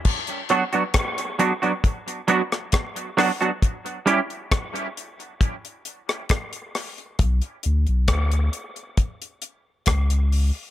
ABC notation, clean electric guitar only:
X:1
M:4/4
L:1/16
Q:1/4=67
K:Bm
V:1 name="Clean electric guitar"
z2 [F,B,DF] [F,B,DF] z2 [F,B,DF] [F,B,DF] z2 [F,B,DF] z3 [F,B,DF] [F,B,DF] | z2 [G,CEG] z12 z | z16 |]